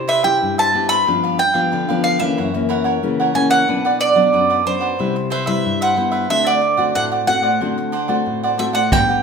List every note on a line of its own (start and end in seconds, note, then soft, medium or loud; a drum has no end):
0.00 0.38 C3 medium
0.00 0.20 E4 medium
0.00 0.20 G4 medium
0.08 0.23 E4 medium
0.08 0.23 B4 medium
0.08 0.23 C5 medium
0.08 0.24 E5 medium
0.08 0.22 E5 medium
0.23 0.69 E4 medium
0.23 0.69 G4 medium
0.23 0.56 B4 medium
0.23 0.56 C5 medium
0.23 0.56 E5 medium
0.23 0.55 G5 medium
0.42 1.04 G2 medium
0.58 0.73 B4 medium
0.58 0.72 C5 medium
0.58 0.73 E5 medium
0.58 0.89 A5 medium
0.72 0.94 B3 medium
0.72 0.88 E4 soft
0.72 0.94 E4 medium
0.72 0.94 G4 medium
0.72 0.88 B4 medium
0.72 0.89 C5 soft
0.72 0.88 E5 soft
0.89 1.05 B4 medium
0.89 1.05 C5 medium
0.89 1.05 E5 medium
0.89 1.39 B5 loud
1.07 1.70 G2 medium
1.07 1.38 F3 medium
1.07 1.38 B3 soft
1.07 1.22 D4 medium
1.07 1.38 D4 medium
1.07 1.22 G4 soft
1.07 1.22 B4 medium
1.07 1.22 F5 medium
1.23 1.37 G4 medium
1.23 1.37 B4 medium
1.23 1.38 F5 medium
1.38 2.03 G5 medium
1.38 muted cavaquinho stroke soft
1.54 1.83 F3 medium
1.54 1.83 B3 medium
1.54 1.83 D4 medium
1.54 1.71 G4 soft
1.54 1.70 B4 medium
1.54 1.70 F5 medium
1.72 2.35 D3 medium
1.72 1.87 D4 soft
1.72 1.87 G4 medium
1.72 1.88 B4 medium
1.72 1.87 F5 medium
1.89 2.17 F3 medium
1.89 2.17 B3 medium
1.89 2.17 D4 medium
1.89 2.19 G4 medium
1.89 2.18 B4 medium
1.89 2.18 F5 medium
2.04 2.20 F5 medium
2.19 2.48 E3 medium
2.19 2.49 A#3 medium
2.19 2.49 C#4 medium
2.19 2.36 G4 medium
2.19 2.36 B4 medium
2.19 2.82 E5 medium
2.19 2.35 F5 medium
2.37 3.00 F#2 medium
2.37 2.52 E4 soft
2.37 2.53 A#4 soft
2.37 2.53 C#5 soft
2.37 2.53 F#5 soft
2.54 2.98 E3 medium
2.54 2.98 A#3 medium
2.54 2.99 C#4 medium
2.54 muted cavaquinho stroke soft
2.69 2.85 E4 medium
2.69 2.84 A#4 medium
2.69 2.84 C#5 medium
2.69 2.83 F#5 medium
2.84 3.18 A#4 medium
2.84 3.17 C#5 medium
2.84 3.17 F#5 medium
3.03 3.65 C#3 medium
3.03 3.31 E3 medium
3.03 3.31 A#3 medium
3.03 3.31 C#4 medium
3.20 3.33 A#4 medium
3.20 3.34 C#5 medium
3.20 3.34 F#5 medium
3.34 3.63 E3 medium
3.34 3.63 A#3 medium
3.34 3.63 C#4 medium
3.34 3.50 E4 soft
3.34 3.50 A#4 soft
3.34 3.49 C#5 medium
3.34 3.49 F#5 medium
3.34 3.50 G#5 medium
3.50 3.67 A#4 soft
3.50 3.67 C#5 medium
3.50 3.66 F#5 medium
3.50 4.02 F#5 medium
3.68 4.31 B2 medium
3.68 4.12 F#3 medium
3.68 4.13 B3 medium
3.68 3.83 D4 soft
3.68 4.13 D4 medium
3.68 3.84 B4 medium
3.68 3.84 D5 soft
3.68 3.84 F#5 medium
3.85 3.98 B4 medium
3.85 3.99 D5 medium
3.85 3.99 F#5 medium
3.99 4.66 D5 medium
3.99 muted cavaquinho stroke soft
4.15 4.61 F#3 medium
4.15 4.61 B3 medium
4.15 4.61 D4 medium
4.15 4.32 B4 medium
4.15 4.32 D5 medium
4.15 4.31 F#5 medium
4.33 4.96 F#2 medium
4.33 4.49 D4 soft
4.33 4.49 B4 medium
4.33 4.49 D5 medium
4.33 4.48 F#5 medium
4.50 4.81 B4 medium
4.50 4.80 D5 medium
4.50 4.79 F#5 medium
4.66 4.94 F#3 medium
4.66 4.94 B3 medium
4.66 4.94 D4 medium
4.66 5.28 C5 medium
4.80 4.98 B4 medium
4.80 4.97 D5 medium
4.80 4.97 F#5 medium
4.99 5.62 C3 medium
4.99 5.30 G3 medium
4.99 5.14 E4 soft
4.99 5.31 E4 medium
4.99 5.15 B4 soft
4.99 5.14 C5 soft
4.99 5.15 E5 soft
5.16 muted cavaquinho stroke soft
5.30 5.46 E4 medium
5.30 5.46 B4 medium
5.30 5.46 C5 medium
5.30 5.49 C5 medium
5.30 5.45 E5 medium
5.46 5.92 G3 medium
5.46 5.92 E4 medium
5.46 5.79 B4 medium
5.46 5.80 C5 medium
5.46 5.79 E5 medium
5.46 5.82 E5 medium
5.65 6.27 G2 medium
5.81 5.96 B4 medium
5.81 5.95 C5 medium
5.81 5.96 E5 medium
5.81 6.30 F#5 medium
5.96 6.25 G3 soft
5.96 6.25 B3 medium
5.96 6.12 E4 soft
5.96 6.25 E4 medium
5.96 6.11 B4 soft
5.96 6.12 C5 soft
5.96 6.10 E5 medium
6.12 6.28 B4 medium
6.12 6.29 C5 medium
6.12 6.28 E5 medium
6.30 6.93 D3 medium
6.30 6.61 A3 medium
6.30 6.61 C4 soft
6.30 6.45 D4 soft
6.30 6.61 F#4 medium
6.30 6.45 C5 soft
6.30 6.46 D5 medium
6.30 6.47 E5 medium
6.30 6.45 F#5 soft
6.46 6.60 C5 medium
6.46 6.92 D5 medium
6.46 6.61 D5 medium
6.46 6.61 F#5 medium
6.62 muted cavaquinho stroke soft
6.77 7.23 A3 medium
6.77 7.23 C4 medium
6.77 7.23 F#4 medium
6.77 6.94 C5 medium
6.77 6.94 D5 medium
6.77 6.93 F#5 medium
6.95 7.58 A2 medium
6.95 7.11 D4 medium
6.95 7.11 C5 soft
6.95 7.11 D5 soft
6.95 7.04 F#5 medium
6.95 7.10 F#5 medium
7.12 7.42 C5 medium
7.12 7.42 D5 medium
7.12 7.41 F#5 medium
7.27 7.47 A3 medium
7.27 7.48 C4 medium
7.27 7.48 F#4 medium
7.27 8.55 F#5 medium
7.42 7.59 C5 medium
7.42 7.59 D5 medium
7.42 7.59 F#5 medium
7.61 8.23 D3 medium
7.61 7.92 A3 soft
7.61 7.92 C4 medium
7.61 7.76 D4 soft
7.61 7.93 F#4 medium
7.61 7.76 C5 soft
7.61 7.77 D5 soft
7.61 7.77 F#5 soft
7.78 muted cavaquinho stroke soft
7.92 8.08 D4 medium
7.92 8.08 C5 medium
7.92 8.08 D5 medium
7.92 8.07 F#5 medium
8.08 8.54 A3 medium
8.08 8.54 C4 medium
8.08 8.54 F#4 medium
8.08 8.41 C5 medium
8.08 8.41 D5 medium
8.08 8.41 F#5 medium
8.26 8.89 A2 medium
8.43 8.57 C5 medium
8.43 8.57 D5 medium
8.43 8.58 F#5 medium
8.58 8.79 A3 medium
8.58 8.79 C4 soft
8.58 8.74 D4 soft
8.58 8.79 F#4 medium
8.58 8.74 C5 soft
8.58 8.73 D5 soft
8.58 8.64 E5 medium
8.58 8.72 F#5 medium
8.73 8.91 C5 soft
8.73 8.90 D5 medium
8.73 8.90 F#5 medium
8.73 8.91 F#5 medium
8.92 9.23 G3 medium
8.92 9.23 B3 soft
8.92 9.07 D4 soft
8.92 9.23 D4 medium
8.92 9.08 G4 medium
8.92 9.08 B4 soft
8.92 9.07 F#5 medium
8.92 9.23 G5 loud
8.92 kick medium
8.92 cross-stick medium
8.92 closed hi-hat medium
9.09 9.23 G4 medium
9.09 9.23 B4 medium
9.09 9.23 F#5 medium